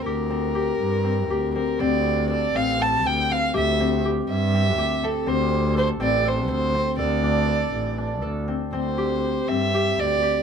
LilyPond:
<<
  \new Staff \with { instrumentName = "Violin" } { \time 7/8 \key c \mixolydian \tempo 4 = 121 bes'2. bes'8 | d''4 d''8 f''8 a''8 g''8 f''8 | e''4 r8 e''4. a'8 | c''4 c''8 d''8 c''8 c''4 |
d''2~ d''8 r4 | c''4. e''4 d''4 | }
  \new Staff \with { instrumentName = "Harp" } { \time 7/8 \key c \mixolydian g'8 c'8 g'4 c'8 g'8 c'8 | c'4 a'8 c'8 a'4 c'8 | g'8 c'8 g'4 c'8 g'8 c'8 | c'4 a'8 c'8 a'4 c'8 |
a'8 d'8 a'4 d'8 a'8 c'8 | c'8 g'4 c'8 g'8 c'8 g'8 | }
  \new Staff \with { instrumentName = "Double bass" } { \clef bass \time 7/8 \key c \mixolydian d,4. g,4 d,8 r8 | d,4. a,,4 d,8 r8 | d,4. g,4 d,8 r8 | d,4. a,,4 d,8 r8 |
d,4. a,,4 d,8 r8 | d,4. g,4 d,8 r8 | }
>>